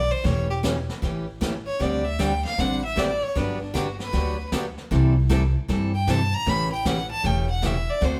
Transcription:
0.00 0.13 D5 loud
0.11 0.27 C5 medium
0.24 0.87 E1 medium
0.24 0.46 E3 medium
0.24 0.47 A3 medium
0.24 0.47 C#4 medium
0.24 0.47 G4 medium
0.24 0.49 C#5 medium
0.24 brush sweep soft
0.24 kick soft
0.24 snare soft
0.50 0.58 G4 medium
0.63 0.75 E3 medium
0.63 0.76 A3 medium
0.63 0.76 C#4 medium
0.63 0.76 G4 medium
0.63 kick soft
0.63 snare medium
0.63 hi-hat pedal medium
0.89 snare soft
1.02 1.65 A1 medium
1.02 1.25 E3 medium
1.02 1.25 A3 medium
1.02 1.25 C#4 medium
1.02 1.25 G4 medium
1.02 brush sweep soft
1.02 kick soft
1.02 snare soft
1.41 1.53 E3 medium
1.41 1.53 A3 medium
1.41 1.53 C#4 medium
1.41 1.53 G4 medium
1.41 kick soft
1.41 snare medium
1.41 hi-hat pedal soft
1.67 1.83 C#5 medium
1.79 2.43 D2 medium
1.79 2.02 D3 medium
1.79 2.02 G3 medium
1.79 2.02 C4 medium
1.79 2.03 D4 medium
1.79 2.03 G4 medium
1.79 2.07 D5 medium
1.79 brush sweep soft
1.79 kick soft
1.79 snare soft
2.05 2.22 E5 medium
2.19 2.31 D3 medium
2.19 2.31 G3 medium
2.19 2.31 C4 medium
2.19 2.31 D4 medium
2.19 2.32 G4 medium
2.19 2.44 G5 medium
2.19 kick soft
2.19 snare medium
2.19 hi-hat pedal medium
2.45 2.61 F5 loud
2.45 snare soft
2.58 3.20 A1 medium
2.58 2.80 D3 medium
2.58 2.81 G3 medium
2.58 2.81 C4 medium
2.58 2.81 D4 medium
2.58 2.81 G4 medium
2.58 2.84 F#5 medium
2.58 brush sweep soft
2.58 kick soft
2.58 snare soft
2.85 2.99 E5 medium
2.96 3.08 D3 medium
2.96 3.09 G3 medium
2.96 3.09 C4 medium
2.96 3.09 D4 medium
2.96 3.09 G4 medium
2.96 3.24 D5 medium
2.96 kick soft
2.96 snare medium
2.96 hi-hat pedal medium
3.23 3.40 C#5 medium
3.35 3.98 G1 medium
3.35 3.58 D3 medium
3.35 3.58 F#3 medium
3.35 3.58 B3 medium
3.35 3.58 D4 medium
3.35 3.59 G4 medium
3.35 3.61 B4 medium
3.35 brush sweep soft
3.35 kick soft
3.35 snare soft
3.62 3.77 D4 soft
3.74 3.86 D3 medium
3.74 3.86 F#3 medium
3.74 3.86 B3 medium
3.74 3.86 D4 medium
3.74 4.00 F#4 medium
3.74 3.87 G4 medium
3.74 kick soft
3.74 snare medium
3.74 hi-hat pedal medium
4.00 4.49 B4 medium
4.00 snare soft
4.13 4.76 D2 medium
4.13 4.35 D3 medium
4.13 4.35 F#3 medium
4.13 4.36 B3 medium
4.13 4.36 D4 medium
4.13 4.36 G4 medium
4.13 brush sweep soft
4.13 kick soft
4.13 snare soft
4.52 4.64 D3 medium
4.52 4.64 F#3 medium
4.52 4.64 B3 medium
4.52 4.65 D4 medium
4.52 4.65 G4 medium
4.52 kick soft
4.52 snare medium
4.52 hi-hat pedal medium
4.78 snare soft
4.91 5.53 C2 medium
4.91 5.13 C3 medium
4.91 5.13 E3 medium
4.91 5.13 G3 medium
4.91 5.14 C4 medium
4.91 5.14 E4 medium
4.91 5.14 A4 medium
4.91 brush sweep soft
4.91 kick soft
4.91 snare soft
5.29 5.42 C3 medium
5.29 5.42 E3 medium
5.29 5.42 G3 medium
5.29 5.42 C4 medium
5.29 5.42 E4 medium
5.29 5.42 A4 medium
5.29 kick soft
5.29 snare medium
5.29 hi-hat pedal medium
5.68 6.31 G2 medium
5.68 5.91 C3 medium
5.68 5.91 E3 medium
5.68 5.91 G3 medium
5.68 5.91 C4 medium
5.68 5.91 E4 medium
5.68 5.91 A4 medium
5.68 brush sweep soft
5.68 kick soft
5.68 snare soft
5.95 6.11 G5 medium
6.07 6.19 C3 medium
6.07 6.19 E3 medium
6.07 6.19 G3 medium
6.07 6.20 C4 medium
6.07 6.20 E4 medium
6.07 6.20 A4 medium
6.07 6.36 A5 medium
6.07 kick soft
6.07 snare medium
6.07 hi-hat pedal medium
6.34 6.51 A#5 loud
6.46 7.08 A1 medium
6.46 6.68 C#3 medium
6.46 6.69 E3 medium
6.46 6.69 A3 medium
6.46 6.69 C#4 medium
6.46 6.69 G4 medium
6.46 6.72 B5 loud
6.46 brush sweep soft
6.46 kick soft
6.46 snare soft
6.73 6.89 G5 medium
6.85 6.97 C#3 medium
6.85 6.97 E3 medium
6.85 6.97 A3 medium
6.85 6.98 C#4 medium
6.85 6.98 G4 medium
6.85 7.10 F#5 medium
6.85 kick soft
6.85 snare medium
6.85 hi-hat pedal medium
7.11 7.28 A5 loud
7.23 7.86 E1 medium
7.23 7.46 C#3 medium
7.23 7.46 E3 medium
7.23 7.46 A3 medium
7.23 7.46 C#4 medium
7.23 7.47 G4 medium
7.23 7.50 G5 medium
7.23 brush sweep soft
7.23 kick soft
7.23 snare soft
7.50 7.67 F#5 medium
7.62 7.74 C#3 medium
7.62 7.75 E3 medium
7.62 7.75 A3 medium
7.62 7.75 C#4 medium
7.62 7.75 G4 medium
7.62 7.91 E5 medium
7.62 kick soft
7.62 snare medium
7.62 hi-hat pedal medium
7.90 8.06 D5 loud
8.01 8.20 D2 medium
8.01 8.20 D3 medium
8.01 8.20 A3 medium
8.01 8.20 C4 medium
8.01 8.20 F#4 medium
8.01 8.20 A4 medium
8.01 8.20 C5 medium
8.01 brush sweep soft
8.01 kick soft
8.01 snare soft

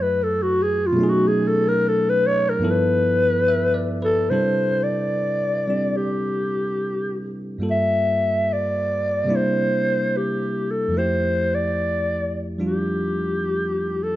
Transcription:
0.00 0.94 F#2 medium
0.00 0.92 F#3 medium
0.00 0.95 A3 medium
0.00 0.98 E4 medium
0.00 0.99 G#4 medium
0.00 0.25 B4 medium
0.23 0.44 A4 medium
0.42 0.64 F#4 medium
0.62 0.88 G#4 medium
0.87 1.11 F4 medium
0.92 2.60 B2 medium
0.92 2.60 F#3 medium
0.97 2.62 A3 medium
0.97 2.63 C#4 medium
0.97 2.64 D#4 medium
1.03 2.65 G#4 medium
1.09 1.29 F#4 medium
1.28 1.49 G#4 medium
1.48 1.70 A4 medium
1.68 1.90 A#4 medium
1.88 2.11 A4 medium
2.09 2.28 B4 medium
2.27 2.51 C#5 loud
2.50 2.72 A#4 medium
2.59 4.28 G2 medium
2.59 4.28 F3 medium
2.59 4.29 B3 medium
2.59 4.30 E4 soft
2.64 4.30 A4 medium
2.71 3.87 B4 medium
3.48 3.98 E5 medium
3.74 4.17 D5 medium
4.02 4.31 A4 medium
4.02 4.45 B4 medium
4.30 7.62 C3 soft
4.30 5.66 G3 soft
4.30 5.69 D4 soft
4.30 7.63 E4 soft
4.30 7.62 A4 medium
4.30 4.85 C5 medium
4.83 5.98 D5 medium
5.67 7.59 G3 soft
5.67 7.62 C4 soft
5.67 7.63 D4 soft
5.67 7.63 G4 soft
5.96 7.34 G4 medium
7.58 9.26 G2 soft
7.58 9.25 G3 soft
7.58 9.27 A#3 soft
7.58 9.28 F4 soft
7.63 9.28 A4 soft
7.71 8.55 E5 medium
8.53 9.37 D5 medium
9.24 10.92 C3 soft
9.24 10.93 G3 soft
9.24 10.93 A#3 soft
9.29 10.94 D4 soft
9.29 10.95 E4 medium
9.36 10.18 C5 medium
10.17 10.72 G4 medium
10.71 10.99 A4 medium
10.88 14.16 F2 soft
10.88 12.57 F3 soft
10.94 14.16 A3 soft
10.94 14.16 E4 soft
10.94 11.56 C5 medium
10.99 14.16 G4 soft
11.55 12.44 D5 medium
12.58 14.16 F3 soft
12.58 14.16 G3 soft
12.58 14.16 D4 soft
12.58 14.16 F4 soft
12.64 14.05 G4 medium
14.03 14.16 A4 medium

